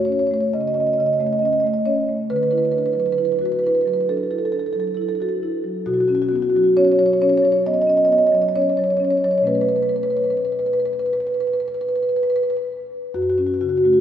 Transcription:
Already playing: F#2 A3
0.05 C#4 C#5
0.12 C#5
0.19 C#5
0.27 C#5
0.31 A3 C#5
0.40 C#5
0.53 C#3 D#5
0.60 D#5
0.68 D#5
0.74 C#4 D#5
0.80 D#5
0.87 D#5
0.93 D#5
0.98 C#3 D#5
1.06 D#5
1.13 D#5
1.20 A3 D#5
1.26 D#5
1.33 D#5
1.39 C#4 D#5
1.45 D#5
1.53 D#5
1.60 D#5
1.64 A3 D#5
1.74 D#5
1.86 C#4 C#5
2.09 A3
2.30 D3 B4
2.36 B4
2.43 B4
2.51 E4 B4
2.58 B4
2.65 B4
2.72 D4 B4
2.78 B4
2.86 B4
2.93 F#3 B4
3.00 B4
3.06 B4
3.12 B4
3.18 E4 B4
3.25 B4
3.32 B4
3.39 F#4 B4
3.45 B4
3.52 B4
3.59 B4
3.64 E4 B4
3.75 B4
3.81 B4
3.85 F#3 B4
3.93 B4
4.01 B4
4.09 D4 A4
4.17 A4
4.23 A4
4.31 E4 A4
4.38 A4
4.45 A4
4.52 D4 A4
4.59 A4
4.66 A4
4.73 F#3 A4
4.80 A4
4.87 A4
4.94 E4 A4
5.02 A4
5.09 A4
5.15 A4
5.20 F#4 A4
5.29 A4
5.43 E4
5.64 F#3
5.86 B2 F#4
5.94 F#4
6.00 F#4
6.08 C#4 F#4
6.15 F#4
6.22 F#4
6.28 B3 F#4
6.36 F#4
6.42 F#4
6.50 F#4
6.55 F#3 F#4
6.64 F#4
6.77 C#4 C#5
6.85 C#5
6.92 C#5
6.99 F#3 C#5
7.06 C#5
7.13 C#5
7.22 C#4 C#5
7.29 C#5
7.37 C#5
7.42 F#3 C#5
7.52 C#5
7.66 B3 D#5
7.74 D#5
7.82 D#5
7.87 C#4 D#5
7.97 D#5
8.05 B3 D#5
8.12 D#5
8.18 D#5
8.27 D#5
8.32 F#3 D#5
8.42 D#5
8.49 D#5
8.55 C#4 C#5
8.62 C#5
8.69 C#5
8.77 F#3 C#5
8.84 C#5
8.90 C#5
8.97 C#4 C#5
9.05 C#5
9.11 C#5
9.17 C#5
9.24 F#3 C#5
9.31 C#5
9.38 B2 C#5
9.43 A3 C#4 B4
9.55 B4
9.61 B4
9.69 B4
9.76 B4
9.82 B4
9.89 B4
9.96 B4
10.03 B4
10.10 B4
10.17 B4
10.24 B4
10.30 B4
10.37 B4
10.45 B4
10.52 B4
10.59 B4
10.66 B4
10.73 B4
10.80 B4
10.85 B4
10.93 B4
10.99 B4
11.06 B4
11.13 B4
11.20 B4
11.27 B4
11.34 B4
11.40 B4
11.47 B4
11.53 B4
11.60 B4
11.68 B4
11.74 B4
11.81 B4
11.88 B4
11.96 B4
12.03 B4
12.09 B4
12.16 B4
12.23 B4
12.30 B4
12.36 B4
12.43 B4
12.50 B4
12.57 B4
13.14 F#2 F#4
13.22 F#4
13.30 F#4
13.38 C#4 F#4
13.47 F#4
13.54 F#4
13.61 C#3 F#4
13.69 F#4
13.77 F#4
13.84 A3 F#4
13.93 F#4

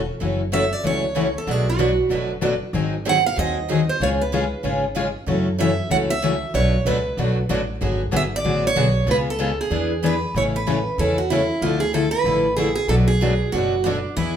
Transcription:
0.20 F#1 C#3 E3 F#3 A3 C#4 E4 F#4 A4
0.52 C#3 E3 F#3 A3 C#4 E4 F#4 A4 E5
0.73 D5
0.84 C#2 C#3 E3 F#3 A3 C#4 E4 F#4 A4 C#5
1.15 C#3 E3 F#3 A3 C#4 E4 F#4 A4
1.38 A4
1.47 B1 B2 F#3 A3 D4 F#4 G#4 B4
1.70 F#4
1.79 B2 F#3 A3 D4 F#4 B4
2.10 F#1 B2 F#3 A3 D4 F#4 B4
2.42 B2 F#3 A3 D4 F#4 B4
2.73 G#1 D#3 F#3 C4 D#4 G#4
3.05 D#3 F#3 C4 D#4 G#4 F#5
3.26 F5
3.36 D#2 D#3 F#3 C4 D#4 G#4 D#5
3.68 D#3 F#3 C4 D#4 G#4
3.89 C5
4.00 C#2 C#3 G#3 C#4 F4 G#4 C#5
4.21 B4
4.32 C#3 G#3 C#4 F4 G#4
4.63 G#1 C#3 G#3 C#4 F4 G#4
4.95 C#3 G#3 C#4 F4 G#4
5.26 F#2 C#3 E3 F#3 A3 C#4 E4 F#4 A4
5.58 C#3 E3 F#3 A3 C#4 E4 F#4 A4 E5
5.90 C#2 C#3 E3 F#3 A3 C#4 E4 F#4 A4 F#5
6.10 E5
6.22 C#3 E3 F#3 A3 C#4 E4 F#4 A4
6.54 B1 B2 F#3 A3 D4 F#4 B4 C#5
6.85 C#2 B2 F#3 A3 D4 F#4 B4
7.17 B1 B2 F#3 A3 D4 F#4 B4
7.49 A1 B2 F#3 A3 D4 F#4 B4
7.81 G#1 D3 F#3 B3 F#4 G#4
8.12 G#1 D3 F#3 B3 F#4 G#4
8.16 E5
8.36 D5
8.44 A1 D3 F#3 B3 F#4 G#4
8.67 C#5
8.76 B1 D3 F#3 B3 F#4 G#4
9.06 C#2 C#3 G#3 B3 F4 G#4
9.11 B4
9.30 A4
9.39 C#3 G#3 B3 F4 G#4
9.61 G#4
9.70 E2 E3 B3 D4 G#4 B4
10.03 E3 B3 D4 G#4 B4
10.34 A1 C#3 E3 G#3 A3 C#4 E4 G#4 A4 C#5
10.56 B4
10.67 C#3 E3 G#3 A3 C#4 E4 G#4 A4
10.98 E2 C#3 E3 G#3 A3 C#4 E4 G#4 A4
11.18 F#4
11.30 C#3 E3 G#3 A3 C#4 E4 G#4 A4
11.62 D2 D3 F3 A3 E4 F4 A4
11.80 G#4
11.93 D3 F3 A3 E4 A4
12.11 B4
12.24 A1 D3 F3 A3 E4 A4
12.57 D3 F3 A3 E4 G#4 A4
12.75 G#4
12.88 B1 B2 F#3 A3 D4 F#4 A4 B4
13.08 G#4
13.21 B2 F#3 A3 D4 F#4 B4
13.52 F#1 B2 F#3 A3 D4 F#4 B4
13.84 B2 F#3 A3 D4 F#4 B4
14.17 E2 E3 G#3 B3 E4 G#4

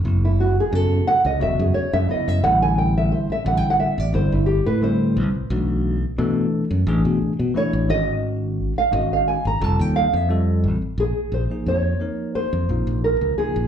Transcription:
0.04 F#1 C#3 F#3 B3 E4
0.25 E4
0.40 F#4
0.60 G#4
0.72 F#2 C#3 F#3 B3 F#4 A4
1.07 F#5
1.25 C#2 D#5
1.39 E1 C#3 F#3 B3 F#4 E5
1.59 F#2 G#4
1.74 C#5, muted fingered electric bass stroke
1.93 F#2 E5
2.08 C#3 F#3 B3 E4 D#5, muted fingered electric bass stroke
2.28 F#2 E5
2.43 A1 D3 G3 C4 E4 F#5
2.62 G#5
2.78 G5
2.98 E5
3.12 C5
3.30 E5, muted fingered electric bass stroke
3.44 A1 D3 G3 C4 E4 F#5
3.57 G5
3.70 F#5
3.80 E5, muted fingered electric bass stroke
3.98 A1 D5
4.12 G1 D3 G3 C4 E4 C5
4.32 G1 E4
4.46 G4
4.66 A2 B4
4.81 D3 G3 C4 E4 C5
5.17 C2
5.34 muted fingered electric bass stroke
5.50 B1 E3 A3 D4 F#4
6.18 B2 E3 A3 D4 A4
6.71 F#2
6.87 A1 E3 A3 D4 G#4
7.05 B2
7.22 muted fingered electric bass stroke
7.39 B2
7.54 E3 A3 D4 E4 C#5, muted fingered electric bass stroke
7.73 A1
7.89 G#1 D#3 G#3 C#4 F#4 D#5
8.76 F5, muted fingered electric bass stroke
8.91 G#1 D#3 G#3 C#4 F#4 D#5
9.13 F5
9.27 G#5, muted fingered electric bass stroke
9.45 G#1 A#5
9.60 F1 G3 C4 F4 A4 A5
9.79 D#2 G5
9.96 F5
10.13 F2 E5
10.29 G3 C4 F4 A4 D#5
10.64 A1
10.82 muted fingered electric bass stroke
10.98 A#1 G#4
11.32 A#1 C5
11.50 F3 A#3 D#4 G#4
11.66 F2 C#5
12.00 F3 A#3 D#4 A#4
12.35 C5, muted fingered electric bass stroke
12.53 F2
12.69 A#1 F3 A#3 D#4 F4
12.87 A#1
13.04 A#4
13.21 C#2
13.38 F3 A#3 D#4 F4 G#4, muted fingered electric bass stroke
13.56 A#1

